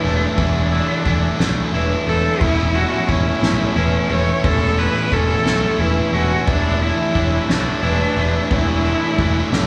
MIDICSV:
0, 0, Header, 1, 7, 480
1, 0, Start_track
1, 0, Tempo, 677430
1, 269, Time_signature, 6, 3, 24, 8
1, 6850, End_track
2, 0, Start_track
2, 0, Title_t, "Vibraphone"
2, 0, Program_c, 0, 11
2, 0, Note_on_c, 0, 71, 86
2, 268, Note_off_c, 0, 71, 0
2, 508, Note_on_c, 0, 69, 91
2, 979, Note_off_c, 0, 69, 0
2, 988, Note_on_c, 0, 69, 94
2, 1228, Note_off_c, 0, 69, 0
2, 1229, Note_on_c, 0, 71, 81
2, 1706, Note_on_c, 0, 76, 102
2, 1709, Note_off_c, 0, 71, 0
2, 2186, Note_on_c, 0, 73, 81
2, 2187, Note_off_c, 0, 76, 0
2, 2663, Note_on_c, 0, 71, 81
2, 2667, Note_off_c, 0, 73, 0
2, 3145, Note_off_c, 0, 71, 0
2, 3388, Note_on_c, 0, 69, 88
2, 3856, Note_off_c, 0, 69, 0
2, 3864, Note_on_c, 0, 69, 96
2, 4105, Note_off_c, 0, 69, 0
2, 4108, Note_on_c, 0, 71, 85
2, 4587, Note_off_c, 0, 71, 0
2, 4591, Note_on_c, 0, 76, 96
2, 5068, Note_off_c, 0, 76, 0
2, 5068, Note_on_c, 0, 73, 79
2, 5547, Note_off_c, 0, 73, 0
2, 5551, Note_on_c, 0, 71, 85
2, 6028, Note_off_c, 0, 71, 0
2, 6270, Note_on_c, 0, 69, 87
2, 6744, Note_off_c, 0, 69, 0
2, 6752, Note_on_c, 0, 69, 92
2, 6850, Note_off_c, 0, 69, 0
2, 6850, End_track
3, 0, Start_track
3, 0, Title_t, "Cello"
3, 0, Program_c, 1, 42
3, 28, Note_on_c, 1, 62, 96
3, 251, Note_off_c, 1, 62, 0
3, 275, Note_on_c, 1, 62, 98
3, 1203, Note_off_c, 1, 62, 0
3, 1465, Note_on_c, 1, 69, 99
3, 1708, Note_on_c, 1, 64, 113
3, 1719, Note_off_c, 1, 69, 0
3, 1945, Note_on_c, 1, 66, 99
3, 1956, Note_off_c, 1, 64, 0
3, 2184, Note_on_c, 1, 64, 107
3, 2195, Note_off_c, 1, 66, 0
3, 2664, Note_on_c, 1, 61, 100
3, 2675, Note_off_c, 1, 64, 0
3, 2912, Note_on_c, 1, 73, 118
3, 2923, Note_off_c, 1, 61, 0
3, 3154, Note_on_c, 1, 69, 116
3, 3164, Note_off_c, 1, 73, 0
3, 3391, Note_on_c, 1, 71, 108
3, 3402, Note_off_c, 1, 69, 0
3, 3638, Note_on_c, 1, 69, 113
3, 3648, Note_off_c, 1, 71, 0
3, 4111, Note_on_c, 1, 64, 94
3, 4122, Note_off_c, 1, 69, 0
3, 4349, Note_on_c, 1, 66, 103
3, 4359, Note_off_c, 1, 64, 0
3, 4587, Note_off_c, 1, 66, 0
3, 4595, Note_on_c, 1, 62, 111
3, 4836, Note_on_c, 1, 64, 108
3, 4847, Note_off_c, 1, 62, 0
3, 5320, Note_on_c, 1, 62, 104
3, 5330, Note_off_c, 1, 64, 0
3, 6032, Note_off_c, 1, 62, 0
3, 6038, Note_on_c, 1, 64, 106
3, 6850, Note_off_c, 1, 64, 0
3, 6850, End_track
4, 0, Start_track
4, 0, Title_t, "Overdriven electric guitar"
4, 0, Program_c, 2, 29
4, 0, Note_on_c, 2, 52, 85
4, 25, Note_on_c, 2, 64, 76
4, 32, Note_on_c, 2, 62, 70
4, 40, Note_on_c, 2, 57, 68
4, 260, Note_off_c, 2, 52, 0
4, 263, Note_on_c, 2, 52, 104
4, 264, Note_off_c, 2, 62, 0
4, 267, Note_off_c, 2, 57, 0
4, 270, Note_on_c, 2, 57, 97
4, 273, Note_on_c, 2, 62, 108
4, 276, Note_off_c, 2, 64, 0
4, 279, Note_on_c, 2, 64, 114
4, 501, Note_off_c, 2, 64, 0
4, 504, Note_on_c, 2, 64, 83
4, 505, Note_off_c, 2, 62, 0
4, 513, Note_on_c, 2, 62, 69
4, 518, Note_off_c, 2, 57, 0
4, 520, Note_on_c, 2, 57, 59
4, 737, Note_off_c, 2, 52, 0
4, 740, Note_on_c, 2, 52, 78
4, 743, Note_off_c, 2, 62, 0
4, 744, Note_off_c, 2, 57, 0
4, 747, Note_on_c, 2, 57, 85
4, 752, Note_on_c, 2, 62, 84
4, 753, Note_off_c, 2, 64, 0
4, 756, Note_on_c, 2, 64, 87
4, 981, Note_off_c, 2, 64, 0
4, 983, Note_on_c, 2, 64, 77
4, 986, Note_off_c, 2, 62, 0
4, 994, Note_on_c, 2, 62, 71
4, 996, Note_off_c, 2, 57, 0
4, 999, Note_on_c, 2, 57, 70
4, 1223, Note_off_c, 2, 52, 0
4, 1226, Note_on_c, 2, 52, 75
4, 1228, Note_off_c, 2, 57, 0
4, 1228, Note_off_c, 2, 62, 0
4, 1231, Note_on_c, 2, 57, 77
4, 1236, Note_on_c, 2, 62, 84
4, 1238, Note_off_c, 2, 64, 0
4, 1241, Note_on_c, 2, 64, 82
4, 1462, Note_off_c, 2, 64, 0
4, 1464, Note_off_c, 2, 62, 0
4, 1465, Note_on_c, 2, 64, 72
4, 1473, Note_on_c, 2, 62, 66
4, 1477, Note_off_c, 2, 57, 0
4, 1480, Note_on_c, 2, 57, 58
4, 1696, Note_off_c, 2, 62, 0
4, 1699, Note_off_c, 2, 52, 0
4, 1702, Note_on_c, 2, 52, 98
4, 1705, Note_off_c, 2, 57, 0
4, 1708, Note_on_c, 2, 57, 94
4, 1711, Note_on_c, 2, 61, 104
4, 1714, Note_off_c, 2, 64, 0
4, 1716, Note_on_c, 2, 64, 101
4, 1939, Note_off_c, 2, 64, 0
4, 1942, Note_on_c, 2, 64, 71
4, 1947, Note_off_c, 2, 61, 0
4, 1950, Note_on_c, 2, 61, 73
4, 1954, Note_off_c, 2, 57, 0
4, 1957, Note_on_c, 2, 57, 62
4, 2175, Note_off_c, 2, 52, 0
4, 2178, Note_on_c, 2, 52, 83
4, 2181, Note_off_c, 2, 57, 0
4, 2184, Note_on_c, 2, 57, 78
4, 2186, Note_off_c, 2, 61, 0
4, 2189, Note_on_c, 2, 61, 92
4, 2190, Note_off_c, 2, 64, 0
4, 2193, Note_on_c, 2, 64, 87
4, 2417, Note_off_c, 2, 64, 0
4, 2420, Note_on_c, 2, 64, 80
4, 2422, Note_off_c, 2, 61, 0
4, 2431, Note_on_c, 2, 61, 74
4, 2432, Note_off_c, 2, 57, 0
4, 2435, Note_on_c, 2, 57, 68
4, 2658, Note_off_c, 2, 52, 0
4, 2661, Note_on_c, 2, 52, 82
4, 2663, Note_off_c, 2, 61, 0
4, 2664, Note_off_c, 2, 57, 0
4, 2667, Note_on_c, 2, 57, 89
4, 2672, Note_on_c, 2, 61, 86
4, 2674, Note_off_c, 2, 64, 0
4, 2676, Note_on_c, 2, 64, 86
4, 2898, Note_off_c, 2, 64, 0
4, 2901, Note_on_c, 2, 64, 84
4, 2902, Note_off_c, 2, 61, 0
4, 2911, Note_on_c, 2, 61, 65
4, 2915, Note_off_c, 2, 57, 0
4, 2918, Note_on_c, 2, 57, 64
4, 3139, Note_off_c, 2, 52, 0
4, 3142, Note_off_c, 2, 61, 0
4, 3142, Note_on_c, 2, 52, 100
4, 3146, Note_off_c, 2, 57, 0
4, 3148, Note_on_c, 2, 57, 103
4, 3151, Note_on_c, 2, 61, 103
4, 3154, Note_off_c, 2, 64, 0
4, 3157, Note_on_c, 2, 64, 102
4, 3380, Note_off_c, 2, 64, 0
4, 3382, Note_off_c, 2, 61, 0
4, 3383, Note_on_c, 2, 64, 75
4, 3391, Note_on_c, 2, 61, 69
4, 3396, Note_off_c, 2, 57, 0
4, 3399, Note_on_c, 2, 57, 63
4, 3621, Note_off_c, 2, 52, 0
4, 3624, Note_on_c, 2, 52, 81
4, 3626, Note_off_c, 2, 57, 0
4, 3626, Note_off_c, 2, 61, 0
4, 3628, Note_on_c, 2, 57, 83
4, 3635, Note_on_c, 2, 61, 95
4, 3636, Note_off_c, 2, 64, 0
4, 3638, Note_on_c, 2, 64, 85
4, 3858, Note_off_c, 2, 64, 0
4, 3861, Note_on_c, 2, 64, 83
4, 3862, Note_off_c, 2, 61, 0
4, 3871, Note_on_c, 2, 61, 78
4, 3872, Note_off_c, 2, 57, 0
4, 3875, Note_on_c, 2, 57, 68
4, 4102, Note_off_c, 2, 52, 0
4, 4105, Note_on_c, 2, 52, 79
4, 4106, Note_off_c, 2, 61, 0
4, 4108, Note_off_c, 2, 57, 0
4, 4110, Note_on_c, 2, 57, 84
4, 4114, Note_on_c, 2, 61, 85
4, 4116, Note_off_c, 2, 64, 0
4, 4118, Note_on_c, 2, 64, 89
4, 4344, Note_off_c, 2, 64, 0
4, 4346, Note_on_c, 2, 64, 89
4, 4348, Note_off_c, 2, 61, 0
4, 4356, Note_on_c, 2, 61, 78
4, 4358, Note_off_c, 2, 57, 0
4, 4361, Note_on_c, 2, 57, 64
4, 4577, Note_off_c, 2, 61, 0
4, 4583, Note_off_c, 2, 52, 0
4, 4585, Note_on_c, 2, 52, 101
4, 4588, Note_off_c, 2, 57, 0
4, 4591, Note_on_c, 2, 57, 106
4, 4597, Note_off_c, 2, 64, 0
4, 4597, Note_on_c, 2, 62, 106
4, 4599, Note_on_c, 2, 64, 114
4, 4825, Note_off_c, 2, 64, 0
4, 4828, Note_on_c, 2, 64, 80
4, 4833, Note_off_c, 2, 62, 0
4, 4836, Note_on_c, 2, 62, 73
4, 4840, Note_off_c, 2, 57, 0
4, 4843, Note_on_c, 2, 57, 67
4, 5064, Note_off_c, 2, 52, 0
4, 5067, Note_on_c, 2, 52, 80
4, 5071, Note_off_c, 2, 57, 0
4, 5073, Note_on_c, 2, 57, 91
4, 5074, Note_off_c, 2, 62, 0
4, 5077, Note_on_c, 2, 62, 85
4, 5080, Note_off_c, 2, 64, 0
4, 5082, Note_on_c, 2, 64, 91
4, 5304, Note_off_c, 2, 64, 0
4, 5307, Note_on_c, 2, 64, 85
4, 5308, Note_off_c, 2, 62, 0
4, 5316, Note_on_c, 2, 62, 74
4, 5319, Note_off_c, 2, 57, 0
4, 5322, Note_on_c, 2, 57, 70
4, 5542, Note_off_c, 2, 52, 0
4, 5545, Note_on_c, 2, 52, 81
4, 5548, Note_off_c, 2, 62, 0
4, 5549, Note_off_c, 2, 57, 0
4, 5551, Note_on_c, 2, 57, 85
4, 5557, Note_on_c, 2, 62, 86
4, 5558, Note_off_c, 2, 64, 0
4, 5561, Note_on_c, 2, 64, 91
4, 5784, Note_off_c, 2, 64, 0
4, 5787, Note_off_c, 2, 62, 0
4, 5787, Note_on_c, 2, 64, 83
4, 5796, Note_on_c, 2, 62, 76
4, 5798, Note_off_c, 2, 57, 0
4, 5801, Note_on_c, 2, 57, 65
4, 6023, Note_off_c, 2, 52, 0
4, 6026, Note_on_c, 2, 52, 99
4, 6029, Note_off_c, 2, 57, 0
4, 6029, Note_off_c, 2, 62, 0
4, 6032, Note_on_c, 2, 57, 107
4, 6037, Note_on_c, 2, 62, 100
4, 6039, Note_off_c, 2, 64, 0
4, 6042, Note_on_c, 2, 64, 117
4, 6265, Note_off_c, 2, 62, 0
4, 6265, Note_off_c, 2, 64, 0
4, 6267, Note_on_c, 2, 64, 72
4, 6274, Note_on_c, 2, 62, 75
4, 6278, Note_off_c, 2, 57, 0
4, 6281, Note_on_c, 2, 57, 63
4, 6500, Note_off_c, 2, 52, 0
4, 6502, Note_on_c, 2, 52, 73
4, 6505, Note_off_c, 2, 62, 0
4, 6507, Note_off_c, 2, 57, 0
4, 6509, Note_on_c, 2, 57, 82
4, 6514, Note_on_c, 2, 62, 80
4, 6515, Note_off_c, 2, 64, 0
4, 6518, Note_on_c, 2, 64, 92
4, 6738, Note_off_c, 2, 64, 0
4, 6741, Note_on_c, 2, 64, 76
4, 6742, Note_off_c, 2, 62, 0
4, 6750, Note_on_c, 2, 62, 75
4, 6751, Note_off_c, 2, 57, 0
4, 6754, Note_on_c, 2, 57, 74
4, 6850, Note_off_c, 2, 52, 0
4, 6850, Note_off_c, 2, 57, 0
4, 6850, Note_off_c, 2, 62, 0
4, 6850, Note_off_c, 2, 64, 0
4, 6850, End_track
5, 0, Start_track
5, 0, Title_t, "Clean electric guitar"
5, 0, Program_c, 3, 27
5, 0, Note_on_c, 3, 52, 87
5, 0, Note_on_c, 3, 62, 81
5, 0, Note_on_c, 3, 64, 86
5, 268, Note_off_c, 3, 52, 0
5, 510, Note_off_c, 3, 62, 0
5, 510, Note_off_c, 3, 64, 0
5, 1705, Note_on_c, 3, 40, 85
5, 3146, Note_off_c, 3, 40, 0
5, 3149, Note_on_c, 3, 40, 88
5, 5088, Note_off_c, 3, 40, 0
5, 6850, End_track
6, 0, Start_track
6, 0, Title_t, "Fingered electric bass"
6, 0, Program_c, 4, 33
6, 30, Note_on_c, 4, 28, 97
6, 178, Note_off_c, 4, 28, 0
6, 267, Note_on_c, 4, 28, 98
6, 564, Note_off_c, 4, 28, 0
6, 750, Note_on_c, 4, 28, 98
6, 897, Note_off_c, 4, 28, 0
6, 987, Note_on_c, 4, 35, 87
6, 1136, Note_off_c, 4, 35, 0
6, 1225, Note_on_c, 4, 28, 87
6, 1374, Note_off_c, 4, 28, 0
6, 1464, Note_on_c, 4, 28, 92
6, 1614, Note_off_c, 4, 28, 0
6, 1708, Note_on_c, 4, 28, 101
6, 2004, Note_off_c, 4, 28, 0
6, 2187, Note_on_c, 4, 28, 95
6, 2335, Note_off_c, 4, 28, 0
6, 2424, Note_on_c, 4, 35, 93
6, 2573, Note_off_c, 4, 35, 0
6, 2663, Note_on_c, 4, 28, 94
6, 2813, Note_off_c, 4, 28, 0
6, 2904, Note_on_c, 4, 28, 94
6, 3053, Note_off_c, 4, 28, 0
6, 3146, Note_on_c, 4, 28, 104
6, 3443, Note_off_c, 4, 28, 0
6, 3628, Note_on_c, 4, 28, 103
6, 3776, Note_off_c, 4, 28, 0
6, 3862, Note_on_c, 4, 35, 86
6, 4011, Note_off_c, 4, 35, 0
6, 4098, Note_on_c, 4, 28, 95
6, 4249, Note_off_c, 4, 28, 0
6, 4337, Note_on_c, 4, 28, 89
6, 4488, Note_off_c, 4, 28, 0
6, 4588, Note_on_c, 4, 28, 109
6, 4884, Note_off_c, 4, 28, 0
6, 5067, Note_on_c, 4, 28, 99
6, 5215, Note_off_c, 4, 28, 0
6, 5304, Note_on_c, 4, 35, 90
6, 5453, Note_off_c, 4, 35, 0
6, 5545, Note_on_c, 4, 28, 101
6, 5694, Note_off_c, 4, 28, 0
6, 5784, Note_on_c, 4, 28, 93
6, 5933, Note_off_c, 4, 28, 0
6, 6030, Note_on_c, 4, 28, 105
6, 6325, Note_off_c, 4, 28, 0
6, 6507, Note_on_c, 4, 28, 94
6, 6655, Note_off_c, 4, 28, 0
6, 6745, Note_on_c, 4, 35, 90
6, 6850, Note_off_c, 4, 35, 0
6, 6850, End_track
7, 0, Start_track
7, 0, Title_t, "Drums"
7, 26, Note_on_c, 9, 51, 92
7, 97, Note_off_c, 9, 51, 0
7, 267, Note_on_c, 9, 51, 112
7, 269, Note_on_c, 9, 36, 114
7, 338, Note_off_c, 9, 51, 0
7, 340, Note_off_c, 9, 36, 0
7, 508, Note_on_c, 9, 51, 86
7, 579, Note_off_c, 9, 51, 0
7, 747, Note_on_c, 9, 51, 90
7, 748, Note_on_c, 9, 36, 90
7, 817, Note_off_c, 9, 51, 0
7, 819, Note_off_c, 9, 36, 0
7, 990, Note_on_c, 9, 38, 111
7, 990, Note_on_c, 9, 51, 98
7, 1061, Note_off_c, 9, 38, 0
7, 1061, Note_off_c, 9, 51, 0
7, 1227, Note_on_c, 9, 51, 85
7, 1298, Note_off_c, 9, 51, 0
7, 1466, Note_on_c, 9, 51, 85
7, 1537, Note_off_c, 9, 51, 0
7, 1707, Note_on_c, 9, 49, 110
7, 1708, Note_on_c, 9, 36, 118
7, 1778, Note_off_c, 9, 49, 0
7, 1779, Note_off_c, 9, 36, 0
7, 1946, Note_on_c, 9, 51, 84
7, 2016, Note_off_c, 9, 51, 0
7, 2187, Note_on_c, 9, 36, 91
7, 2187, Note_on_c, 9, 51, 96
7, 2258, Note_off_c, 9, 36, 0
7, 2258, Note_off_c, 9, 51, 0
7, 2426, Note_on_c, 9, 38, 113
7, 2426, Note_on_c, 9, 51, 109
7, 2497, Note_off_c, 9, 38, 0
7, 2497, Note_off_c, 9, 51, 0
7, 2665, Note_on_c, 9, 51, 85
7, 2736, Note_off_c, 9, 51, 0
7, 2906, Note_on_c, 9, 51, 91
7, 2977, Note_off_c, 9, 51, 0
7, 3145, Note_on_c, 9, 51, 120
7, 3147, Note_on_c, 9, 36, 120
7, 3216, Note_off_c, 9, 51, 0
7, 3218, Note_off_c, 9, 36, 0
7, 3387, Note_on_c, 9, 51, 96
7, 3458, Note_off_c, 9, 51, 0
7, 3627, Note_on_c, 9, 36, 88
7, 3627, Note_on_c, 9, 51, 95
7, 3698, Note_off_c, 9, 36, 0
7, 3698, Note_off_c, 9, 51, 0
7, 3867, Note_on_c, 9, 38, 110
7, 3867, Note_on_c, 9, 51, 115
7, 3938, Note_off_c, 9, 38, 0
7, 3938, Note_off_c, 9, 51, 0
7, 4107, Note_on_c, 9, 51, 97
7, 4178, Note_off_c, 9, 51, 0
7, 4349, Note_on_c, 9, 51, 91
7, 4420, Note_off_c, 9, 51, 0
7, 4585, Note_on_c, 9, 51, 110
7, 4588, Note_on_c, 9, 36, 124
7, 4656, Note_off_c, 9, 51, 0
7, 4659, Note_off_c, 9, 36, 0
7, 4827, Note_on_c, 9, 51, 86
7, 4898, Note_off_c, 9, 51, 0
7, 5068, Note_on_c, 9, 36, 94
7, 5068, Note_on_c, 9, 51, 88
7, 5139, Note_off_c, 9, 36, 0
7, 5139, Note_off_c, 9, 51, 0
7, 5309, Note_on_c, 9, 38, 116
7, 5309, Note_on_c, 9, 51, 105
7, 5380, Note_off_c, 9, 38, 0
7, 5380, Note_off_c, 9, 51, 0
7, 5550, Note_on_c, 9, 51, 81
7, 5621, Note_off_c, 9, 51, 0
7, 5789, Note_on_c, 9, 51, 90
7, 5860, Note_off_c, 9, 51, 0
7, 6028, Note_on_c, 9, 51, 116
7, 6029, Note_on_c, 9, 36, 117
7, 6099, Note_off_c, 9, 36, 0
7, 6099, Note_off_c, 9, 51, 0
7, 6269, Note_on_c, 9, 51, 85
7, 6340, Note_off_c, 9, 51, 0
7, 6508, Note_on_c, 9, 36, 95
7, 6508, Note_on_c, 9, 51, 94
7, 6579, Note_off_c, 9, 36, 0
7, 6579, Note_off_c, 9, 51, 0
7, 6748, Note_on_c, 9, 38, 116
7, 6748, Note_on_c, 9, 51, 105
7, 6818, Note_off_c, 9, 38, 0
7, 6818, Note_off_c, 9, 51, 0
7, 6850, End_track
0, 0, End_of_file